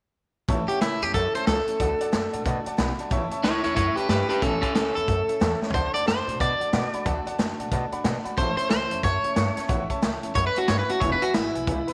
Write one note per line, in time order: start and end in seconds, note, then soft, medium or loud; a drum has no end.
0.48 0.61 A1 loud
0.48 0.69 A2 medium
0.48 0.69 E3 medium
0.48 0.69 A3 medium
0.48 0.68 C#4 medium
0.48 0.66 E4 medium
0.48 0.61 C#5 loud
0.48 0.61 E5 loud
0.48 0.61 A5 loud
0.48 kick loud
0.48 closed hi-hat medium
0.68 0.80 C#4 soft
0.68 0.81 E4 medium
0.68 0.81 G4 medium
0.68 0.77 C#5 medium
0.68 0.77 E5 medium
0.68 0.77 F#5 medium
0.68 muted upright bass stroke medium
0.68 closed hi-hat medium
0.80 0.94 C#2 medium
0.80 1.01 A2 medium
0.80 1.02 E3 medium
0.80 1.02 A3 medium
0.80 1.01 C#4 medium
0.80 1.03 E4 medium
0.80 1.00 E4 medium
0.80 0.94 A5 medium
0.80 snare loud
0.80 closed hi-hat medium
1.01 1.09 E2 loud
1.01 1.13 A3 soft
1.01 1.14 C#4 soft
1.01 1.14 E4 medium
1.01 1.14 G4 medium
1.01 1.10 C#5 medium
1.01 1.10 E5 medium
1.01 1.10 A5 medium
1.01 closed hi-hat medium
1.13 1.27 F#2 medium
1.13 1.34 E3 medium
1.13 1.35 A3 medium
1.13 1.34 C#4 medium
1.13 1.33 E4 medium
1.13 1.34 A4 medium
1.13 1.27 C#5 medium
1.13 1.27 E5 medium
1.13 1.27 A5 medium
1.13 kick loud
1.13 closed hi-hat medium
1.34 1.46 A3 soft
1.34 1.47 C#4 soft
1.34 1.47 E4 soft
1.34 1.47 C5 medium
1.34 1.43 C#5 medium
1.34 1.43 E5 medium
1.34 1.43 A5 medium
1.34 muted upright bass stroke medium
1.34 closed hi-hat medium
1.47 1.59 C#2 loud
1.47 1.67 A2 medium
1.47 1.68 E3 medium
1.47 1.68 A3 medium
1.47 1.66 C#4 medium
1.47 1.65 E4 medium
1.47 2.43 A4 medium
1.47 1.59 C#5 medium
1.47 1.60 E5 medium
1.47 1.60 A5 loud
1.47 snare loud
1.47 closed hi-hat medium
1.66 1.78 A3 soft
1.66 1.80 C#4 medium
1.66 1.79 E4 medium
1.66 1.75 C#5 medium
1.66 1.76 E5 medium
1.66 1.76 A5 medium
1.66 muted upright bass stroke medium
1.66 closed hi-hat medium
1.79 1.92 D2 loud
1.79 2.00 D3 medium
1.79 2.00 A3 medium
1.79 1.99 D4 medium
1.79 1.97 F#4 medium
1.79 1.93 D5 loud
1.79 1.93 F#5 medium
1.79 1.93 A5 loud
1.79 kick loud
1.79 closed hi-hat medium
1.98 2.11 A3 soft
1.98 2.11 D4 medium
1.98 2.12 F#4 medium
1.98 2.08 D5 loud
1.98 2.08 F#5 loud
1.98 2.08 A5 loud
1.98 muted upright bass stroke medium
1.98 closed hi-hat medium
2.11 2.26 F#2 loud
2.11 2.33 D3 medium
2.11 2.33 A3 medium
2.11 2.32 D4 loud
2.11 2.30 F#4 loud
2.11 2.25 D5 medium
2.11 2.25 F#5 medium
2.11 2.26 A5 medium
2.11 snare loud
2.11 closed hi-hat medium
2.32 2.41 A2 medium
2.32 2.43 A3 soft
2.32 2.44 D4 medium
2.32 2.45 F#4 medium
2.32 2.40 D5 medium
2.32 2.41 F#5 medium
2.32 2.41 A5 medium
2.32 closed hi-hat medium
2.44 2.58 B2 medium
2.44 2.65 D3 medium
2.44 2.66 A3 medium
2.44 2.64 D4 medium
2.44 2.63 F#4 medium
2.44 2.58 D5 medium
2.44 2.58 F#5 medium
2.44 2.59 A5 loud
2.44 kick loud
2.44 closed hi-hat medium
2.64 2.76 A3 medium
2.64 2.77 D4 medium
2.64 2.77 F#4 medium
2.64 2.74 D5 medium
2.64 2.74 F#5 medium
2.64 2.74 A5 loud
2.64 muted upright bass stroke medium
2.64 closed hi-hat medium
2.77 2.91 B1 loud
2.77 2.98 D3 medium
2.77 2.98 A3 medium
2.77 2.97 D4 medium
2.77 2.96 F#4 loud
2.77 2.91 D5 medium
2.77 2.91 F#5 medium
2.77 2.91 B5 loud
2.77 snare loud
2.77 closed hi-hat medium
2.97 3.10 A3 medium
2.97 3.11 D4 medium
2.97 3.10 F#4 medium
2.97 3.07 D5 medium
2.97 3.07 F#5 medium
2.97 3.07 A5 medium
2.97 muted upright bass stroke medium
2.97 closed hi-hat medium
3.10 3.23 A1 medium
3.10 3.31 A2 medium
3.10 3.31 E3 medium
3.10 3.31 A3 medium
3.10 3.30 C#4 medium
3.10 3.29 E4 loud
3.10 3.24 C#5 loud
3.10 3.24 E5 loud
3.10 3.24 A5 loud
3.10 kick loud
3.10 closed hi-hat medium
3.30 3.43 A3 soft
3.30 3.43 C#4 medium
3.30 3.43 E4 medium
3.30 3.39 C#5 loud
3.30 3.39 E5 loud
3.30 3.39 A5 loud
3.30 muted upright bass stroke medium
3.30 closed hi-hat medium
3.43 3.56 C#2 medium
3.43 3.64 A2 medium
3.43 3.64 E3 medium
3.43 3.64 A3 medium
3.43 3.64 C#4 medium
3.43 3.62 E4 medium
3.43 3.63 C#5 loud
3.43 snare loud
3.43 closed hi-hat medium
3.63 3.72 E2 loud
3.63 3.75 A3 soft
3.63 3.76 C#4 medium
3.63 3.76 E4 medium
3.63 3.74 E4 medium
3.63 3.75 C#5 medium
3.63 3.72 C#5 medium
3.63 3.72 E5 medium
3.63 3.72 A5 medium
3.63 closed hi-hat medium
3.75 3.89 F#2 medium
3.75 3.97 E3 medium
3.75 3.97 A3 medium
3.75 3.96 C#4 medium
3.75 3.95 E4 medium
3.75 3.96 C#5 loud
3.75 3.89 C#5 medium
3.75 3.89 E5 medium
3.75 kick loud
3.75 closed hi-hat loud
3.95 4.09 C#4 medium
3.95 4.09 E4 medium
3.95 4.08 G4 medium
3.95 4.09 B4 medium
3.95 4.05 C#5 medium
3.95 4.05 E5 medium
3.95 4.05 A5 medium
3.95 muted upright bass stroke medium
3.95 closed hi-hat medium
4.09 4.22 G2 medium
4.09 4.30 A2 medium
4.09 4.30 E3 medium
4.09 4.30 A3 medium
4.09 4.29 C#4 medium
4.09 4.27 E4 medium
4.09 4.28 G4 medium
4.09 4.28 B4 medium
4.09 4.22 C#5 medium
4.09 4.22 E5 medium
4.09 snare loud
4.09 closed hi-hat medium
4.29 4.41 C#4 soft
4.29 4.42 E4 soft
4.29 4.41 G4 medium
4.29 4.42 B4 medium
4.29 4.37 C#5 medium
4.29 4.37 E5 medium
4.29 4.37 A5 medium
4.29 muted upright bass stroke medium
4.29 closed hi-hat medium
4.41 4.55 A1 loud
4.41 4.62 A2 medium
4.41 4.62 E3 medium
4.41 4.63 A3 medium
4.41 4.60 C#4 medium
4.41 4.62 C#4 medium
4.41 4.61 E4 medium
4.41 4.61 A4 medium
4.41 4.54 C#5 loud
4.41 4.54 E5 medium
4.41 4.55 A5 loud
4.41 kick loud
4.41 closed hi-hat medium
4.61 4.74 C#4 medium
4.61 4.75 C#4 medium
4.61 4.75 E4 medium
4.61 4.74 A4 medium
4.61 4.70 C#5 loud
4.61 4.70 E5 medium
4.61 4.70 B5 medium
4.61 muted upright bass stroke medium
4.61 kick medium
4.61 closed hi-hat medium
4.75 4.88 C#2 medium
4.75 4.95 A2 medium
4.75 4.96 E3 medium
4.75 4.96 A3 medium
4.75 4.94 C#4 medium
4.75 4.95 C#4 medium
4.75 4.93 E4 medium
4.75 4.94 A4 medium
4.75 4.88 A5 medium
4.75 snare loud
4.75 closed hi-hat medium
4.94 5.04 E2 loud
4.94 5.06 A3 soft
4.94 5.07 C#4 soft
4.94 5.08 E4 medium
4.94 5.59 A4 medium
4.94 5.03 C#5 medium
4.94 5.04 E5 medium
4.94 5.04 B5 medium
4.94 closed hi-hat medium
5.07 5.20 F#2 medium
5.07 5.28 E3 medium
5.07 5.28 A3 medium
5.07 5.27 C#4 medium
5.07 5.26 E4 medium
5.07 5.20 C#5 medium
5.07 5.20 E5 medium
5.07 5.21 A5 medium
5.07 kick loud
5.07 closed hi-hat medium
5.27 5.39 A3 soft
5.27 5.40 C#4 soft
5.27 5.40 E4 soft
5.27 5.36 C#5 medium
5.27 5.36 E5 medium
5.27 5.37 A5 medium
5.27 muted upright bass stroke medium
5.27 closed hi-hat medium
5.40 5.53 E2 medium
5.40 5.61 A2 medium
5.40 5.61 E3 medium
5.40 5.61 A3 medium
5.40 5.62 C#4 medium
5.40 5.60 E4 medium
5.40 5.54 C#5 medium
5.40 5.54 E5 medium
5.40 5.54 A5 loud
5.40 snare loud
5.40 closed hi-hat medium
5.61 5.73 A3 medium
5.61 5.74 C#4 medium
5.61 5.74 E4 medium
5.61 5.69 C#5 medium
5.61 5.70 E5 medium
5.61 5.70 A5 medium
5.61 muted upright bass stroke medium
5.61 snare medium
5.70 5.86 D2 loud
5.70 5.94 D3 medium
5.70 5.95 A3 medium
5.70 5.94 C5 loud
5.70 5.86 D5 loud
5.70 kick loud
5.70 floor tom medium
5.74 5.94 D4 medium
5.74 5.92 F#4 medium
5.74 5.87 F#5 loud
5.74 5.87 A5 loud
5.74 closed hi-hat medium
5.93 6.05 A3 soft
5.93 6.06 D4 medium
5.93 6.06 F#4 soft
5.93 6.02 D5 loud
5.93 6.06 D5 loud
5.93 6.02 F#5 medium
5.93 6.02 A5 medium
5.93 muted upright bass stroke medium
5.93 closed hi-hat medium
6.06 6.19 F#2 medium
6.06 6.27 D3 medium
6.06 6.27 A3 medium
6.06 6.27 D4 medium
6.06 6.26 F#4 medium
6.06 6.39 C5 medium
6.06 6.20 F#5 medium
6.06 snare loud
6.06 closed hi-hat medium
6.27 6.35 A2 loud
6.27 6.39 A3 soft
6.27 6.40 D4 soft
6.27 6.40 F#4 medium
6.27 6.35 D5 medium
6.27 6.35 F#5 medium
6.27 6.35 A5 medium
6.27 closed hi-hat medium
6.39 6.52 B2 medium
6.39 6.60 D3 medium
6.39 6.60 A3 medium
6.39 6.60 D4 medium
6.39 6.59 F#4 medium
6.39 6.52 D5 medium
6.39 7.04 D5 loud
6.39 6.52 F#5 medium
6.39 6.52 A5 medium
6.39 kick loud
6.39 closed hi-hat medium
6.60 6.72 A3 soft
6.60 6.72 D4 soft
6.60 6.73 F#4 medium
6.60 6.68 D5 medium
6.60 6.68 F#5 medium
6.60 6.68 A5 medium
6.60 muted upright bass stroke medium
6.60 closed hi-hat medium
6.72 6.85 B2 loud
6.72 6.93 D3 medium
6.72 6.94 A3 medium
6.72 6.93 D4 medium
6.72 6.91 F#4 medium
6.72 6.85 D5 medium
6.72 6.85 F#5 medium
6.72 6.85 A5 medium
6.72 snare loud
6.72 closed hi-hat medium
6.93 7.05 A3 medium
6.93 7.05 D4 medium
6.93 7.05 F#4 medium
6.93 7.01 D5 medium
6.93 7.01 F#5 medium
6.93 7.01 B5 medium
6.93 muted upright bass stroke medium
6.93 closed hi-hat medium
7.05 7.18 D2 medium
7.05 7.26 D3 medium
7.05 7.26 A3 medium
7.05 7.26 D4 loud
7.05 7.24 F#4 loud
7.05 7.18 D5 loud
7.05 7.18 F#5 loud
7.05 7.18 A5 loud
7.05 kick loud
7.05 closed hi-hat medium
7.25 7.38 A3 soft
7.25 7.38 D4 medium
7.25 7.38 F#4 medium
7.25 7.34 D5 loud
7.25 7.34 F#5 loud
7.25 7.34 A5 loud
7.25 muted upright bass stroke medium
7.25 closed hi-hat medium
7.38 7.51 F#2 medium
7.38 7.59 D3 loud
7.38 7.59 A3 medium
7.38 7.60 D4 loud
7.38 7.58 F#4 loud
7.38 7.51 D5 medium
7.38 7.51 A5 medium
7.38 snare loud
7.38 closed hi-hat medium
7.59 7.67 A2 medium
7.59 7.71 A3 soft
7.59 7.72 D4 medium
7.59 7.72 F#4 medium
7.59 7.67 D5 medium
7.59 7.67 F#5 medium
7.59 7.67 A5 medium
7.59 closed hi-hat medium
7.71 7.84 B2 medium
7.71 7.92 D3 medium
7.71 7.93 A3 medium
7.71 7.92 D4 medium
7.71 7.91 F#4 medium
7.71 7.84 D5 medium
7.71 7.84 F#5 medium
7.71 7.85 A5 loud
7.71 kick loud
7.71 closed hi-hat medium
7.92 8.04 A3 soft
7.92 8.04 D4 medium
7.92 8.05 F#4 medium
7.92 8.00 D5 loud
7.92 8.00 F#5 medium
7.92 8.00 B5 loud
7.92 muted upright bass stroke medium
7.92 closed hi-hat medium
8.04 8.17 B2 medium
8.04 8.25 D3 medium
8.04 8.25 A3 medium
8.04 8.24 D4 medium
8.04 8.23 F#4 medium
8.04 8.17 D5 loud
8.04 8.17 F#5 loud
8.04 8.17 A5 loud
8.04 snare loud
8.04 closed hi-hat medium
8.24 8.37 A3 medium
8.24 8.38 D4 medium
8.24 8.37 F#4 medium
8.24 8.32 D5 medium
8.24 8.32 F#5 medium
8.24 8.33 B5 medium
8.24 muted upright bass stroke medium
8.24 closed hi-hat medium
8.37 8.50 A1 loud
8.37 8.58 A2 medium
8.37 8.58 E3 medium
8.37 8.58 A3 medium
8.37 8.56 C#4 medium
8.37 8.55 E4 medium
8.37 8.56 C5 loud
8.37 8.50 C#5 loud
8.37 8.50 E5 medium
8.37 8.50 A5 loud
8.37 kick loud
8.37 closed hi-hat medium
8.57 8.69 A3 soft
8.57 8.69 C#4 soft
8.57 8.69 E4 medium
8.57 8.70 C5 medium
8.57 8.65 C#5 medium
8.57 8.66 E5 medium
8.57 8.66 A5 medium
8.57 closed hi-hat medium
8.69 8.83 C#2 medium
8.69 8.90 A2 medium
8.69 8.91 E3 medium
8.69 8.90 A3 medium
8.69 8.90 C#4 medium
8.69 8.88 E4 medium
8.69 9.03 C5 loud
8.69 8.83 C#5 medium
8.69 8.83 E5 medium
8.69 8.83 A5 medium
8.69 snare loud
8.69 closed hi-hat medium
8.89 8.99 E2 loud
8.89 9.02 A3 soft
8.89 9.02 C#4 medium
8.89 9.03 E4 medium
8.89 8.98 C#5 medium
8.89 8.99 E5 medium
8.89 8.99 A5 medium
8.89 closed hi-hat medium
9.02 9.16 F#2 medium
9.02 9.23 E3 medium
9.02 9.24 A3 medium
9.02 9.23 C#4 medium
9.02 9.21 E4 medium
9.02 9.16 C#5 medium
9.02 9.68 C#5 loud
9.02 9.16 E5 medium
9.02 9.16 A5 medium
9.02 kick loud
9.02 closed hi-hat medium
9.23 9.35 A3 soft
9.23 9.36 C#4 medium
9.23 9.36 E4 soft
9.23 9.32 C#5 medium
9.23 9.32 E5 medium
9.23 9.32 A5 medium
9.23 muted upright bass stroke medium
9.23 closed hi-hat medium
9.35 9.49 G2 loud
9.35 9.56 A2 medium
9.35 9.57 E3 medium
9.35 9.57 A3 medium
9.35 9.56 C#4 medium
9.35 9.54 E4 medium
9.35 9.49 C#5 medium
9.35 9.49 E5 medium
9.35 9.49 A5 loud
9.35 snare loud
9.35 closed hi-hat medium
9.55 9.67 A3 soft
9.55 9.68 C#4 medium
9.55 9.68 E4 medium
9.55 9.64 C#5 medium
9.55 9.64 E5 medium
9.55 9.65 A5 medium
9.55 muted upright bass stroke medium
9.55 snare soft
9.55 closed hi-hat medium
9.68 9.82 A1 medium
9.68 9.89 A2 loud
9.68 9.90 E3 medium
9.68 9.90 A3 medium
9.68 9.89 C#4 medium
9.68 9.88 E4 loud
9.68 9.81 C#5 loud
9.68 9.82 E5 loud
9.68 9.82 F#5 loud
9.68 kick loud
9.68 closed hi-hat medium
9.89 10.01 A3 soft
9.89 10.02 C#4 medium
9.89 10.02 E4 medium
9.89 9.97 C#5 loud
9.89 9.98 E5 loud
9.89 9.98 A5 loud
9.89 muted upright bass stroke medium
9.89 kick medium
9.89 closed hi-hat medium
10.02 10.15 C#2 medium
10.02 10.23 A2 medium
10.02 10.23 E3 medium
10.02 10.23 A3 medium
10.02 10.23 C#4 medium
10.02 10.21 E4 medium
10.02 10.15 C#5 medium
10.02 10.15 E5 medium
10.02 snare loud
10.02 closed hi-hat medium
10.22 10.31 E2 medium
10.22 10.35 A3 medium
10.22 10.36 C#4 medium
10.22 10.35 E4 medium
10.22 10.31 C#5 medium
10.22 10.31 E5 medium
10.22 10.31 A5 medium
10.22 closed hi-hat medium
10.35 10.48 F#2 medium
10.35 10.56 E3 medium
10.35 10.57 A3 medium
10.35 10.56 C#4 medium
10.35 10.55 E4 medium
10.35 10.46 C#5 loud
10.35 10.48 E5 medium
10.35 10.48 B5 medium
10.35 kick loud
10.35 closed hi-hat medium
10.47 10.57 B4 loud
10.56 10.67 A3 soft
10.56 10.68 C#4 soft
10.56 10.68 E4 medium
10.56 10.68 F#4 medium
10.56 10.63 C#5 medium
10.56 10.64 E5 medium
10.56 10.64 A5 medium
10.56 muted upright bass stroke medium
10.56 closed hi-hat medium
10.68 10.81 G2 medium
10.68 10.89 A2 medium
10.68 10.89 E3 medium
10.68 10.89 A3 medium
10.68 10.89 C#4 medium
10.68 10.87 E4 medium
10.68 10.81 C#5 medium
10.68 10.78 C#5 medium
10.68 10.81 E5 medium
10.68 10.81 B5 medium
10.68 snare loud
10.68 closed hi-hat medium
10.79 10.90 B4 medium
10.88 11.02 A3 soft
10.88 11.02 C#4 soft
10.88 11.01 E4 medium
10.88 11.01 F#4 medium
10.88 10.96 C#5 medium
10.88 10.96 E5 medium
10.88 10.96 A5 medium
10.88 muted upright bass stroke medium
10.88 closed hi-hat medium
11.00 11.14 E1 loud
11.00 11.22 E2 medium
11.00 11.22 B2 medium
11.00 11.22 E3 medium
11.00 11.22 G#3 medium
11.00 11.22 B3 medium
11.00 11.21 E4 medium
11.00 11.14 B4 loud
11.00 11.12 C#5 medium
11.00 11.14 E5 loud
11.00 11.14 G#5 loud
11.00 kick loud
11.00 closed hi-hat medium
11.12 11.23 B4 medium
11.22 11.34 E3 soft
11.22 11.34 G#3 soft
11.22 11.34 B3 medium
11.22 11.34 E4 medium
11.22 11.34 F#4 loud
11.22 11.29 B4 medium
11.22 11.30 E5 medium
11.22 11.30 G#5 loud
11.22 muted upright bass stroke medium
11.22 closed hi-hat medium
11.34 11.47 G#1 medium
11.34 11.55 E2 medium
11.34 11.55 B2 medium
11.34 11.55 E3 medium
11.34 11.55 G#3 medium
11.34 11.54 B3 medium
11.34 11.93 E4 loud
11.34 11.53 E4 loud
11.34 11.47 B4 medium
11.34 11.47 G#5 medium
11.34 snare loud
11.34 closed hi-hat medium
11.54 11.63 B1 loud
11.54 11.65 E3 soft
11.54 11.66 G#3 soft
11.54 11.67 B3 medium
11.54 11.67 E4 medium
11.54 11.62 B4 medium
11.54 11.63 E5 medium
11.54 11.63 G#5 medium
11.54 closed hi-hat medium
11.66 11.80 C#2 medium
11.66 11.88 E3 medium
11.66 11.88 G#3 medium
11.66 11.88 B3 medium
11.66 11.86 E4 medium
11.66 11.80 B4 medium
11.66 11.80 E5 medium
11.66 11.80 G#5 medium
11.66 kick loud
11.66 closed hi-hat medium
11.87 11.93 G#3 medium
11.87 11.93 B3 medium
11.87 11.93 E4 medium
11.87 11.93 B4 loud
11.87 11.93 E5 medium
11.87 11.93 B5 loud
11.87 muted upright bass stroke medium
11.87 closed hi-hat medium